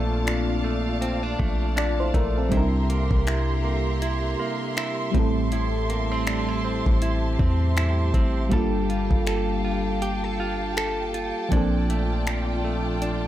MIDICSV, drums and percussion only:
0, 0, Header, 1, 2, 480
1, 0, Start_track
1, 0, Tempo, 750000
1, 1613, Time_signature, 4, 2, 24, 8
1, 8495, End_track
2, 0, Start_track
2, 0, Title_t, "Drums"
2, 173, Note_on_c, 9, 42, 61
2, 177, Note_on_c, 9, 26, 106
2, 237, Note_off_c, 9, 42, 0
2, 241, Note_off_c, 9, 26, 0
2, 654, Note_on_c, 9, 42, 71
2, 718, Note_off_c, 9, 42, 0
2, 894, Note_on_c, 9, 36, 107
2, 958, Note_off_c, 9, 36, 0
2, 1133, Note_on_c, 9, 42, 65
2, 1139, Note_on_c, 9, 26, 103
2, 1197, Note_off_c, 9, 42, 0
2, 1203, Note_off_c, 9, 26, 0
2, 1371, Note_on_c, 9, 36, 97
2, 1373, Note_on_c, 9, 42, 62
2, 1435, Note_off_c, 9, 36, 0
2, 1437, Note_off_c, 9, 42, 0
2, 1611, Note_on_c, 9, 42, 67
2, 1613, Note_on_c, 9, 36, 101
2, 1675, Note_off_c, 9, 42, 0
2, 1677, Note_off_c, 9, 36, 0
2, 1855, Note_on_c, 9, 42, 64
2, 1919, Note_off_c, 9, 42, 0
2, 1989, Note_on_c, 9, 36, 92
2, 2053, Note_off_c, 9, 36, 0
2, 2092, Note_on_c, 9, 42, 57
2, 2096, Note_on_c, 9, 26, 106
2, 2156, Note_off_c, 9, 42, 0
2, 2160, Note_off_c, 9, 26, 0
2, 2573, Note_on_c, 9, 42, 71
2, 2637, Note_off_c, 9, 42, 0
2, 3052, Note_on_c, 9, 42, 61
2, 3057, Note_on_c, 9, 26, 97
2, 3116, Note_off_c, 9, 42, 0
2, 3121, Note_off_c, 9, 26, 0
2, 3293, Note_on_c, 9, 36, 102
2, 3293, Note_on_c, 9, 42, 61
2, 3357, Note_off_c, 9, 36, 0
2, 3357, Note_off_c, 9, 42, 0
2, 3532, Note_on_c, 9, 42, 66
2, 3596, Note_off_c, 9, 42, 0
2, 3775, Note_on_c, 9, 42, 63
2, 3839, Note_off_c, 9, 42, 0
2, 4011, Note_on_c, 9, 42, 58
2, 4015, Note_on_c, 9, 26, 104
2, 4075, Note_off_c, 9, 42, 0
2, 4079, Note_off_c, 9, 26, 0
2, 4393, Note_on_c, 9, 36, 88
2, 4457, Note_off_c, 9, 36, 0
2, 4491, Note_on_c, 9, 42, 72
2, 4555, Note_off_c, 9, 42, 0
2, 4732, Note_on_c, 9, 36, 109
2, 4796, Note_off_c, 9, 36, 0
2, 4971, Note_on_c, 9, 42, 65
2, 4976, Note_on_c, 9, 26, 100
2, 5035, Note_off_c, 9, 42, 0
2, 5040, Note_off_c, 9, 26, 0
2, 5210, Note_on_c, 9, 36, 93
2, 5212, Note_on_c, 9, 42, 59
2, 5274, Note_off_c, 9, 36, 0
2, 5276, Note_off_c, 9, 42, 0
2, 5450, Note_on_c, 9, 42, 68
2, 5452, Note_on_c, 9, 36, 105
2, 5514, Note_off_c, 9, 42, 0
2, 5516, Note_off_c, 9, 36, 0
2, 5695, Note_on_c, 9, 42, 62
2, 5759, Note_off_c, 9, 42, 0
2, 5829, Note_on_c, 9, 36, 91
2, 5893, Note_off_c, 9, 36, 0
2, 5930, Note_on_c, 9, 42, 63
2, 5935, Note_on_c, 9, 26, 106
2, 5994, Note_off_c, 9, 42, 0
2, 5999, Note_off_c, 9, 26, 0
2, 6413, Note_on_c, 9, 42, 72
2, 6477, Note_off_c, 9, 42, 0
2, 6892, Note_on_c, 9, 42, 65
2, 6898, Note_on_c, 9, 26, 101
2, 6956, Note_off_c, 9, 42, 0
2, 6962, Note_off_c, 9, 26, 0
2, 7131, Note_on_c, 9, 42, 60
2, 7195, Note_off_c, 9, 42, 0
2, 7371, Note_on_c, 9, 42, 68
2, 7372, Note_on_c, 9, 36, 104
2, 7435, Note_off_c, 9, 42, 0
2, 7436, Note_off_c, 9, 36, 0
2, 7616, Note_on_c, 9, 42, 62
2, 7680, Note_off_c, 9, 42, 0
2, 7851, Note_on_c, 9, 42, 63
2, 7855, Note_on_c, 9, 26, 108
2, 7915, Note_off_c, 9, 42, 0
2, 7919, Note_off_c, 9, 26, 0
2, 8332, Note_on_c, 9, 42, 74
2, 8396, Note_off_c, 9, 42, 0
2, 8495, End_track
0, 0, End_of_file